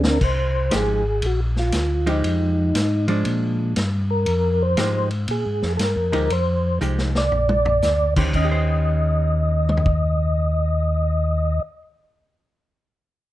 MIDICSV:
0, 0, Header, 1, 5, 480
1, 0, Start_track
1, 0, Tempo, 508475
1, 198, Time_signature, 4, 2, 24, 8
1, 12575, End_track
2, 0, Start_track
2, 0, Title_t, "Tonewheel organ"
2, 0, Program_c, 0, 16
2, 0, Note_on_c, 0, 60, 66
2, 0, Note_on_c, 0, 62, 62
2, 67, Note_on_c, 0, 70, 89
2, 174, Note_off_c, 0, 60, 0
2, 175, Note_off_c, 0, 62, 0
2, 217, Note_off_c, 0, 70, 0
2, 227, Note_on_c, 0, 72, 93
2, 705, Note_off_c, 0, 72, 0
2, 720, Note_on_c, 0, 68, 81
2, 1187, Note_on_c, 0, 66, 86
2, 1191, Note_off_c, 0, 68, 0
2, 1324, Note_off_c, 0, 66, 0
2, 1503, Note_on_c, 0, 65, 81
2, 1982, Note_off_c, 0, 65, 0
2, 1994, Note_on_c, 0, 63, 77
2, 2895, Note_off_c, 0, 63, 0
2, 3876, Note_on_c, 0, 70, 81
2, 4365, Note_on_c, 0, 72, 114
2, 4368, Note_off_c, 0, 70, 0
2, 4805, Note_off_c, 0, 72, 0
2, 5012, Note_on_c, 0, 68, 72
2, 5408, Note_off_c, 0, 68, 0
2, 5447, Note_on_c, 0, 69, 56
2, 5482, Note_off_c, 0, 69, 0
2, 5485, Note_on_c, 0, 70, 77
2, 5971, Note_on_c, 0, 72, 89
2, 5972, Note_off_c, 0, 70, 0
2, 6408, Note_off_c, 0, 72, 0
2, 6772, Note_on_c, 0, 74, 107
2, 7684, Note_off_c, 0, 74, 0
2, 7888, Note_on_c, 0, 75, 74
2, 10972, Note_off_c, 0, 75, 0
2, 12575, End_track
3, 0, Start_track
3, 0, Title_t, "Hollow-body jazz guitar"
3, 0, Program_c, 1, 26
3, 671, Note_on_c, 1, 53, 46
3, 679, Note_on_c, 1, 56, 53
3, 681, Note_on_c, 1, 63, 53
3, 681, Note_on_c, 1, 67, 58
3, 961, Note_off_c, 1, 53, 0
3, 965, Note_off_c, 1, 56, 0
3, 966, Note_off_c, 1, 63, 0
3, 966, Note_off_c, 1, 67, 0
3, 1949, Note_on_c, 1, 53, 58
3, 1950, Note_on_c, 1, 56, 55
3, 1952, Note_on_c, 1, 63, 66
3, 1962, Note_on_c, 1, 67, 63
3, 2559, Note_off_c, 1, 53, 0
3, 2560, Note_off_c, 1, 56, 0
3, 2561, Note_off_c, 1, 63, 0
3, 2566, Note_off_c, 1, 67, 0
3, 2907, Note_on_c, 1, 53, 63
3, 2914, Note_on_c, 1, 56, 65
3, 2919, Note_on_c, 1, 62, 73
3, 3518, Note_off_c, 1, 53, 0
3, 3521, Note_off_c, 1, 56, 0
3, 3523, Note_off_c, 1, 62, 0
3, 4506, Note_on_c, 1, 53, 59
3, 4507, Note_on_c, 1, 56, 59
3, 4516, Note_on_c, 1, 63, 58
3, 4518, Note_on_c, 1, 67, 59
3, 4796, Note_off_c, 1, 53, 0
3, 4797, Note_off_c, 1, 56, 0
3, 4801, Note_off_c, 1, 63, 0
3, 4802, Note_off_c, 1, 67, 0
3, 5781, Note_on_c, 1, 53, 58
3, 5786, Note_on_c, 1, 56, 58
3, 5788, Note_on_c, 1, 63, 69
3, 5795, Note_on_c, 1, 67, 57
3, 5931, Note_off_c, 1, 53, 0
3, 5933, Note_off_c, 1, 56, 0
3, 5934, Note_off_c, 1, 63, 0
3, 5937, Note_off_c, 1, 67, 0
3, 6428, Note_on_c, 1, 53, 43
3, 6432, Note_on_c, 1, 56, 46
3, 6433, Note_on_c, 1, 63, 48
3, 6441, Note_on_c, 1, 67, 47
3, 6717, Note_off_c, 1, 53, 0
3, 6719, Note_off_c, 1, 56, 0
3, 6720, Note_off_c, 1, 63, 0
3, 6724, Note_off_c, 1, 67, 0
3, 7711, Note_on_c, 1, 51, 53
3, 7718, Note_on_c, 1, 67, 54
3, 7719, Note_on_c, 1, 61, 50
3, 7722, Note_on_c, 1, 72, 55
3, 7791, Note_off_c, 1, 51, 0
3, 7802, Note_on_c, 1, 51, 49
3, 7859, Note_off_c, 1, 67, 0
3, 7860, Note_off_c, 1, 61, 0
3, 7861, Note_off_c, 1, 72, 0
3, 7899, Note_on_c, 1, 61, 56
3, 7974, Note_on_c, 1, 67, 58
3, 8037, Note_on_c, 1, 72, 55
3, 10924, Note_off_c, 1, 51, 0
3, 11020, Note_off_c, 1, 61, 0
3, 11095, Note_off_c, 1, 67, 0
3, 11159, Note_off_c, 1, 72, 0
3, 12575, End_track
4, 0, Start_track
4, 0, Title_t, "Tonewheel organ"
4, 0, Program_c, 2, 16
4, 0, Note_on_c, 2, 38, 89
4, 182, Note_off_c, 2, 38, 0
4, 199, Note_on_c, 2, 36, 77
4, 663, Note_off_c, 2, 36, 0
4, 689, Note_on_c, 2, 32, 78
4, 1148, Note_off_c, 2, 32, 0
4, 1161, Note_on_c, 2, 34, 80
4, 1623, Note_off_c, 2, 34, 0
4, 1640, Note_on_c, 2, 38, 79
4, 2103, Note_off_c, 2, 38, 0
4, 2113, Note_on_c, 2, 41, 83
4, 2579, Note_off_c, 2, 41, 0
4, 2592, Note_on_c, 2, 44, 83
4, 3058, Note_off_c, 2, 44, 0
4, 3073, Note_on_c, 2, 46, 81
4, 3538, Note_off_c, 2, 46, 0
4, 3556, Note_on_c, 2, 43, 81
4, 4020, Note_off_c, 2, 43, 0
4, 4031, Note_on_c, 2, 41, 83
4, 4497, Note_off_c, 2, 41, 0
4, 4507, Note_on_c, 2, 44, 77
4, 4975, Note_off_c, 2, 44, 0
4, 4989, Note_on_c, 2, 46, 76
4, 5145, Note_off_c, 2, 46, 0
4, 5152, Note_on_c, 2, 44, 53
4, 5312, Note_off_c, 2, 44, 0
4, 5313, Note_on_c, 2, 41, 61
4, 5461, Note_off_c, 2, 41, 0
4, 5469, Note_on_c, 2, 43, 78
4, 5625, Note_off_c, 2, 43, 0
4, 5627, Note_on_c, 2, 41, 45
4, 5789, Note_off_c, 2, 41, 0
4, 5790, Note_on_c, 2, 38, 59
4, 5939, Note_off_c, 2, 38, 0
4, 5946, Note_on_c, 2, 41, 79
4, 6414, Note_off_c, 2, 41, 0
4, 6428, Note_on_c, 2, 36, 77
4, 6895, Note_off_c, 2, 36, 0
4, 6910, Note_on_c, 2, 34, 73
4, 7376, Note_off_c, 2, 34, 0
4, 7386, Note_on_c, 2, 38, 77
4, 7854, Note_off_c, 2, 38, 0
4, 7866, Note_on_c, 2, 39, 83
4, 10949, Note_off_c, 2, 39, 0
4, 12575, End_track
5, 0, Start_track
5, 0, Title_t, "Drums"
5, 34, Note_on_c, 9, 38, 87
5, 129, Note_off_c, 9, 38, 0
5, 199, Note_on_c, 9, 36, 62
5, 199, Note_on_c, 9, 49, 66
5, 293, Note_off_c, 9, 49, 0
5, 294, Note_off_c, 9, 36, 0
5, 672, Note_on_c, 9, 44, 50
5, 672, Note_on_c, 9, 51, 63
5, 676, Note_on_c, 9, 38, 66
5, 766, Note_off_c, 9, 44, 0
5, 766, Note_off_c, 9, 51, 0
5, 771, Note_off_c, 9, 38, 0
5, 1151, Note_on_c, 9, 51, 56
5, 1246, Note_off_c, 9, 51, 0
5, 1475, Note_on_c, 9, 38, 31
5, 1569, Note_off_c, 9, 38, 0
5, 1626, Note_on_c, 9, 44, 46
5, 1626, Note_on_c, 9, 51, 62
5, 1631, Note_on_c, 9, 38, 62
5, 1721, Note_off_c, 9, 44, 0
5, 1721, Note_off_c, 9, 51, 0
5, 1725, Note_off_c, 9, 38, 0
5, 1953, Note_on_c, 9, 51, 45
5, 2047, Note_off_c, 9, 51, 0
5, 2115, Note_on_c, 9, 51, 53
5, 2209, Note_off_c, 9, 51, 0
5, 2595, Note_on_c, 9, 44, 49
5, 2595, Note_on_c, 9, 51, 65
5, 2599, Note_on_c, 9, 38, 62
5, 2689, Note_off_c, 9, 44, 0
5, 2689, Note_off_c, 9, 51, 0
5, 2694, Note_off_c, 9, 38, 0
5, 2906, Note_on_c, 9, 51, 42
5, 3001, Note_off_c, 9, 51, 0
5, 3067, Note_on_c, 9, 51, 50
5, 3161, Note_off_c, 9, 51, 0
5, 3549, Note_on_c, 9, 44, 52
5, 3549, Note_on_c, 9, 51, 59
5, 3554, Note_on_c, 9, 38, 60
5, 3644, Note_off_c, 9, 44, 0
5, 3644, Note_off_c, 9, 51, 0
5, 3648, Note_off_c, 9, 38, 0
5, 4022, Note_on_c, 9, 51, 55
5, 4117, Note_off_c, 9, 51, 0
5, 4503, Note_on_c, 9, 44, 53
5, 4503, Note_on_c, 9, 51, 62
5, 4507, Note_on_c, 9, 38, 62
5, 4597, Note_off_c, 9, 44, 0
5, 4597, Note_off_c, 9, 51, 0
5, 4602, Note_off_c, 9, 38, 0
5, 4819, Note_on_c, 9, 51, 39
5, 4914, Note_off_c, 9, 51, 0
5, 4981, Note_on_c, 9, 51, 51
5, 5076, Note_off_c, 9, 51, 0
5, 5306, Note_on_c, 9, 38, 34
5, 5401, Note_off_c, 9, 38, 0
5, 5468, Note_on_c, 9, 44, 46
5, 5468, Note_on_c, 9, 51, 57
5, 5472, Note_on_c, 9, 38, 56
5, 5562, Note_off_c, 9, 44, 0
5, 5562, Note_off_c, 9, 51, 0
5, 5567, Note_off_c, 9, 38, 0
5, 5787, Note_on_c, 9, 51, 43
5, 5881, Note_off_c, 9, 51, 0
5, 5949, Note_on_c, 9, 51, 53
5, 6044, Note_off_c, 9, 51, 0
5, 6425, Note_on_c, 9, 44, 55
5, 6520, Note_off_c, 9, 44, 0
5, 6592, Note_on_c, 9, 38, 45
5, 6686, Note_off_c, 9, 38, 0
5, 6750, Note_on_c, 9, 38, 61
5, 6844, Note_off_c, 9, 38, 0
5, 6907, Note_on_c, 9, 43, 51
5, 7002, Note_off_c, 9, 43, 0
5, 7070, Note_on_c, 9, 47, 61
5, 7165, Note_off_c, 9, 47, 0
5, 7226, Note_on_c, 9, 43, 74
5, 7320, Note_off_c, 9, 43, 0
5, 7383, Note_on_c, 9, 44, 55
5, 7388, Note_on_c, 9, 38, 49
5, 7478, Note_off_c, 9, 44, 0
5, 7483, Note_off_c, 9, 38, 0
5, 7705, Note_on_c, 9, 49, 66
5, 7707, Note_on_c, 9, 36, 70
5, 7800, Note_off_c, 9, 49, 0
5, 7802, Note_off_c, 9, 36, 0
5, 7869, Note_on_c, 9, 36, 46
5, 7871, Note_on_c, 9, 49, 52
5, 7963, Note_off_c, 9, 36, 0
5, 7965, Note_off_c, 9, 49, 0
5, 9147, Note_on_c, 9, 47, 52
5, 9224, Note_on_c, 9, 43, 64
5, 9241, Note_off_c, 9, 47, 0
5, 9307, Note_on_c, 9, 36, 77
5, 9319, Note_off_c, 9, 43, 0
5, 9401, Note_off_c, 9, 36, 0
5, 12575, End_track
0, 0, End_of_file